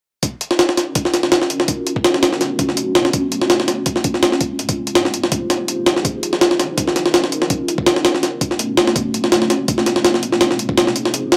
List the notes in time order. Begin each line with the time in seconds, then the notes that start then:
0.23 C#4 D#4 F4 F#4 A#4, kick, closed hi-hat
0.41 closed hi-hat
0.51 snare
0.59 snare, closed hi-hat
0.69 snare
0.77 snare, closed hi-hat
0.95 kick, closed hi-hat
1.05 snare
1.14 snare, closed hi-hat
1.23 snare
1.32 snare, closed hi-hat
1.42 snare
1.50 closed hi-hat
1.60 snare
1.68 A3 B3 C#4 D4 F#4, kick, closed hi-hat
1.87 closed hi-hat
1.96 kick
2.04 snare, closed hi-hat
2.14 snare
2.23 snare, closed hi-hat
2.33 snare
2.41 snare, closed hi-hat
2.59 kick, closed hi-hat
2.69 snare
2.77 closed hi-hat
2.95 snare, closed hi-hat
3.05 snare
3.13 G#3 A#3 C4 C#4 F4, kick, closed hi-hat
3.32 closed hi-hat
3.42 snare
3.50 snare, closed hi-hat
3.60 snare
3.68 snare, closed hi-hat
3.86 kick, closed hi-hat
3.96 snare
4.04 kick, closed hi-hat
4.14 snare
4.23 snare, closed hi-hat
4.32 snare
4.41 kick, closed hi-hat
4.58 D#4 F4 G4 G#4 C5, closed hi-hat
4.69 kick, closed hi-hat
4.87 closed hi-hat
4.95 snare, closed hi-hat
5.05 snare
5.14 closed hi-hat
5.24 snare
5.32 kick, closed hi-hat
5.50 snare, closed hi-hat
5.68 closed hi-hat
5.86 snare, closed hi-hat
5.96 snare
6.05 C#4 D#4 F4 F#4 A#4, kick, closed hi-hat
6.23 closed hi-hat
6.33 snare
6.41 snare, closed hi-hat
6.51 snare
6.60 snare, closed hi-hat
6.78 kick, closed hi-hat
6.88 snare
6.96 snare, closed hi-hat
7.06 snare
7.14 snare, closed hi-hat
7.24 snare
7.32 closed hi-hat
7.42 snare
7.50 A3 B3 C#4 D4 F#4, kick, closed hi-hat
7.68 closed hi-hat
7.78 kick
7.86 snare, closed hi-hat
7.96 snare
8.05 snare, closed hi-hat
8.15 snare
8.23 snare, closed hi-hat
8.41 kick, closed hi-hat
8.51 snare
8.59 closed hi-hat
8.77 snare, closed hi-hat
8.87 snare
8.96 G#3 A#3 C4 C#4 F4, kick, closed hi-hat
9.14 closed hi-hat
9.24 snare
9.32 snare, closed hi-hat
9.42 snare
9.50 snare, closed hi-hat
9.68 kick, closed hi-hat
9.78 snare
9.86 snare, closed hi-hat
9.96 snare
10.05 snare, closed hi-hat
10.14 snare
10.23 closed hi-hat
10.32 snare
10.41 D#4 F4 G4 G#4 C5, snare, closed hi-hat
10.51 snare
10.59 closed hi-hat
10.69 kick
10.78 snare, closed hi-hat
10.87 snare
10.96 closed hi-hat
11.05 snare
11.14 closed hi-hat
11.32 snare, closed hi-hat